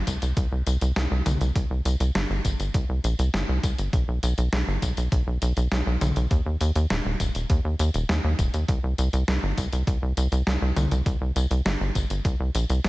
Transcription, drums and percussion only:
0.07 kick medium
0.07 closed hi-hat medium
0.07 tambourine medium
0.22 closed hi-hat medium
0.22 tambourine soft
0.37 kick loud
0.37 closed hi-hat medium
0.37 tambourine soft
0.67 closed hi-hat medium
0.67 tambourine medium
0.81 closed hi-hat medium
0.81 tambourine soft
0.96 snare loud
0.96 closed hi-hat medium
0.96 tambourine soft
1.26 closed hi-hat medium
1.26 mid tom loud
1.26 tambourine medium
1.41 closed hi-hat medium
1.41 tambourine soft
1.56 kick loud
1.56 closed hi-hat medium
1.56 tambourine soft
1.85 closed hi-hat medium
1.85 tambourine medium
2.00 closed hi-hat medium
2.00 tambourine soft
2.15 snare loud
2.15 closed hi-hat medium
2.45 kick medium
2.45 closed hi-hat medium
2.45 tambourine medium
2.60 closed hi-hat medium
2.60 tambourine soft
2.74 kick loud
2.74 closed hi-hat medium
2.74 tambourine soft
3.04 closed hi-hat medium
3.04 tambourine medium
3.19 closed hi-hat medium
3.19 tambourine soft
3.34 snare loud
3.34 closed hi-hat medium
3.34 tambourine soft
3.63 kick loud
3.63 closed hi-hat medium
3.63 tambourine medium
3.78 closed hi-hat medium
3.78 tambourine soft
3.93 kick loud
3.93 closed hi-hat medium
3.93 tambourine soft
4.23 closed hi-hat medium
4.23 tambourine medium
4.38 closed hi-hat medium
4.38 tambourine soft
4.53 snare loud
4.53 closed hi-hat medium
4.53 tambourine soft
4.82 kick medium
4.82 closed hi-hat medium
4.82 tambourine medium
4.97 closed hi-hat medium
4.97 tambourine soft
5.12 kick loud
5.12 closed hi-hat medium
5.12 tambourine soft
5.42 closed hi-hat medium
5.42 tambourine medium
5.57 closed hi-hat medium
5.57 tambourine soft
5.72 snare loud
5.72 closed hi-hat medium
5.72 tambourine soft
6.01 closed hi-hat medium
6.01 mid tom medium
6.01 tambourine medium
6.16 closed hi-hat medium
6.16 tambourine soft
6.31 kick loud
6.31 closed hi-hat medium
6.31 tambourine soft
6.61 closed hi-hat medium
6.61 tambourine medium
6.75 closed hi-hat medium
6.75 tambourine soft
6.90 snare loud
6.90 closed hi-hat medium
6.90 tambourine soft
7.20 kick medium
7.20 closed hi-hat medium
7.20 tambourine medium
7.35 closed hi-hat medium
7.35 tambourine soft
7.50 kick loud
7.50 closed hi-hat medium
7.50 tambourine soft
7.79 closed hi-hat medium
7.79 tambourine medium
7.94 closed hi-hat medium
7.94 tambourine soft
8.09 snare loud
8.09 closed hi-hat medium
8.09 tambourine soft
8.39 kick loud
8.39 closed hi-hat medium
8.39 tambourine medium
8.54 closed hi-hat medium
8.54 tambourine soft
8.68 kick loud
8.68 closed hi-hat medium
8.68 tambourine soft
8.98 closed hi-hat medium
8.98 tambourine medium
9.13 closed hi-hat medium
9.13 tambourine soft
9.28 snare loud
9.28 closed hi-hat medium
9.28 tambourine soft
9.58 kick medium
9.58 closed hi-hat medium
9.58 tambourine medium
9.73 closed hi-hat medium
9.73 tambourine soft
9.87 kick loud
9.87 closed hi-hat medium
9.87 tambourine soft
10.17 closed hi-hat medium
10.17 tambourine medium
10.32 closed hi-hat medium
10.32 tambourine soft
10.47 snare loud
10.47 closed hi-hat medium
10.47 tambourine soft
10.77 closed hi-hat medium
10.77 mid tom loud
10.77 tambourine medium
10.91 closed hi-hat medium
10.91 tambourine soft
11.06 kick loud
11.06 closed hi-hat medium
11.06 tambourine soft
11.36 closed hi-hat medium
11.36 tambourine medium
11.51 closed hi-hat medium
11.51 tambourine soft
11.66 snare loud
11.66 closed hi-hat medium
11.66 tambourine soft
11.95 kick medium
11.95 closed hi-hat medium
11.95 tambourine medium
12.10 closed hi-hat medium
12.10 tambourine soft
12.25 kick loud
12.25 closed hi-hat medium
12.25 tambourine soft
12.55 closed hi-hat medium
12.55 tambourine medium
12.70 closed hi-hat soft
12.70 tambourine soft
12.84 snare loud
12.84 closed hi-hat medium
12.84 tambourine soft

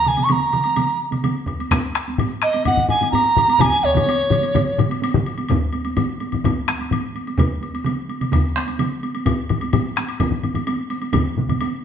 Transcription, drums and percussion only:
0.05 taiko medium
0.05 taiko mid medium
0.05 high woodblock soft
0.17 taiko mid medium
0.17 taiko high medium
0.17 high woodblock soft
0.29 taiko mid loud
0.29 taiko high medium
0.29 high woodblock soft
0.53 taiko mid medium
0.53 high woodblock soft
0.64 taiko high soft
0.64 high woodblock soft
0.76 taiko mid loud
0.76 taiko high medium
0.76 high woodblock medium
1.11 taiko mid medium
1.11 taiko high medium
1.11 high woodblock soft
1.24 taiko mid medium
1.24 taiko high medium
1.24 high woodblock medium
1.46 taiko medium
1.46 high woodblock soft
1.59 taiko high soft
1.59 high woodblock soft
1.71 taiko rim medium
1.71 taiko loud
1.71 taiko high medium
1.71 high woodblock medium
1.95 taiko rim medium
1.95 high woodblock soft
2.08 taiko high medium
2.18 taiko low-mid loud
2.18 taiko high medium
2.18 high woodblock medium
2.42 taiko rim medium
2.42 high woodblock soft
2.53 taiko high medium
2.53 high woodblock soft
2.65 taiko medium
2.65 taiko low-mid medium
2.65 taiko high medium
2.65 high woodblock medium
2.77 taiko low-mid medium
2.89 taiko low-mid medium
2.89 high woodblock soft
3.01 taiko low-mid medium
3.01 taiko high medium
3.01 high woodblock soft
3.12 taiko low-mid medium
3.12 taiko high medium
3.12 high woodblock medium
3.36 taiko low-mid loud
3.36 high woodblock medium
3.48 taiko high medium
3.48 high woodblock medium
3.59 taiko loud
3.59 taiko low-mid loud
3.59 taiko mid loud
3.59 taiko high medium
3.59 high woodblock medium
3.83 taiko medium
3.83 taiko high soft
3.83 high woodblock soft
3.95 taiko low-mid loud
3.95 taiko mid loud
3.95 taiko high medium
3.95 high woodblock medium
4.06 taiko high medium
4.06 high woodblock medium
4.31 taiko low-mid loud
4.31 taiko mid loud
4.31 high woodblock soft
4.41 taiko high medium
4.41 high woodblock medium
4.55 taiko low-mid loud
4.55 taiko mid loud
4.55 taiko high medium
4.55 high woodblock medium
4.78 taiko low-mid loud
4.78 taiko mid medium
4.78 high woodblock medium
4.90 taiko high medium
4.90 high woodblock medium
5.02 taiko high medium
5.02 high woodblock medium
5.14 taiko low-mid loud
5.14 taiko mid loud
5.26 high woodblock soft
5.38 taiko high medium
5.38 high woodblock soft
5.49 taiko loud
5.49 taiko low-mid medium
5.49 taiko high medium
5.49 high woodblock medium
5.73 taiko high medium
5.73 high woodblock soft
5.85 taiko high medium
5.85 high woodblock soft
5.97 taiko low-mid loud
5.97 taiko high medium
5.97 high woodblock medium
6.20 taiko high medium
6.20 high woodblock soft
6.32 taiko low-mid medium
6.32 taiko high soft
6.32 high woodblock soft
6.44 taiko loud
6.44 taiko low-mid loud
6.44 taiko high medium
6.44 high woodblock medium
6.67 taiko rim medium
6.67 taiko high soft
6.67 high woodblock soft
6.79 taiko high medium
6.79 high woodblock soft
6.91 taiko low-mid medium
6.91 taiko high medium
6.91 high woodblock medium
7.15 taiko high soft
7.15 high woodblock soft
7.27 taiko high soft
7.27 high woodblock soft
7.38 taiko loud
7.38 taiko mid medium
7.38 taiko high medium
7.38 high woodblock medium
7.61 taiko high soft
7.61 high woodblock soft
7.74 taiko high soft
7.74 high woodblock soft
7.85 taiko mid loud
7.85 taiko high medium
7.85 high woodblock soft
8.09 taiko high soft
8.09 high woodblock soft
8.21 taiko mid medium
8.21 taiko high soft
8.21 high woodblock soft
8.31 taiko loud
8.31 taiko mid loud
8.31 taiko high medium
8.31 high woodblock medium
8.56 taiko rim medium
8.56 taiko high medium
8.56 high woodblock soft
8.67 taiko high medium
8.67 high woodblock soft
8.79 taiko mid medium
8.79 taiko high medium
8.79 high woodblock medium
9.03 taiko high medium
9.03 high woodblock soft
9.15 taiko high medium
9.15 high woodblock soft
9.26 taiko loud
9.26 taiko low-mid loud
9.26 taiko high medium
9.26 high woodblock medium
9.49 taiko low-mid medium
9.49 taiko high soft
9.49 high woodblock soft
9.61 taiko high medium
9.61 high woodblock soft
9.73 taiko low-mid loud
9.73 taiko high medium
9.73 high woodblock medium
9.96 taiko rim medium
9.96 taiko high medium
9.96 high woodblock soft
10.09 high woodblock medium
10.20 taiko loud
10.20 taiko low-mid medium
10.20 taiko high medium
10.20 high woodblock medium
10.31 taiko low-mid medium
10.43 taiko low-mid medium
10.43 taiko high medium
10.43 high woodblock soft
10.54 taiko low-mid medium
10.54 taiko high medium
10.54 high woodblock soft
10.67 taiko high medium
10.67 high woodblock medium
10.90 taiko high medium
10.90 high woodblock soft
11.02 taiko high medium
11.02 high woodblock soft
11.13 taiko loud
11.13 taiko low-mid loud
11.13 taiko mid medium
11.13 taiko high medium
11.13 high woodblock medium
11.37 taiko low-mid medium
11.37 taiko mid medium
11.37 taiko high medium
11.49 taiko low-mid medium
11.49 taiko mid medium
11.49 taiko high medium
11.49 high woodblock medium
11.61 taiko high medium
11.61 high woodblock medium

